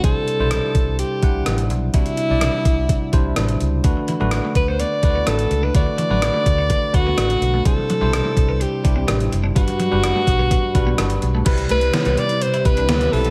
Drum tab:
CC |----------------|----------------|----------------|----------------|
HH |x-x-x-x-x-x-xxx-|xxx-x-x-x-x-xxx-|x-x-x-x-x-x-xxx-|x-x-x-x-x-x-xxx-|
SD |----r-------r---|----r-------r---|----r-------r---|----r-------r---|
BD |o-----o---o-----|o-----o-o-o-----|o-----o---o-----|o-----o-o-o-----|

CC |----------------|----------------|x---------------|
HH |x-x-x-x-x-x-xxx-|xxx-x-x-x-x-xxx-|xxxxxxxxxxxxxxox|
SD |----r-------r---|----r-------r---|----o-------o---|
BD |o-----o---o-----|o-----o-o-o-----|o---------o-----|